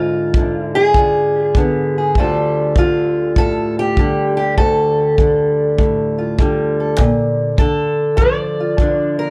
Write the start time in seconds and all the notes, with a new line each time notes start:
Already playing: G#2 D3 F4
0.34 D3, kick
0.62 E4
0.75 G#4
0.94 D3 F4, kick
1.55 D3 B3, kick
1.98 G#4
2.15 D2 D3 G3, kick
2.19 F4 A4
2.76 D3 F4, kick
3.36 A2 A4, kick
3.79 G4
3.97 D3 G3, kick
4.37 G4
4.58 D2 A4, kick
5.18 D3 G3, kick
5.78 A2, kick
6.18 F4
6.39 D3 G3, kick
6.80 A4
6.99 A#2, kick
7.58 D3 A4, kick
8.17 F3 D5, kick
8.60 F4
8.78 D3 D4, kick
9.19 A#4